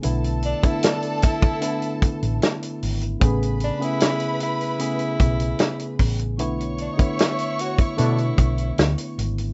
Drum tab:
HH |xxxxxxxxxxxxxxox|xxxxxxxxxxxxxxox|xxxxxxxxxxxxxxxx|
SD |----o-------o---|----o-------o---|----o-------o---|
BD |---o--oo--o-----|o---------o---o-|---o---o--o-----|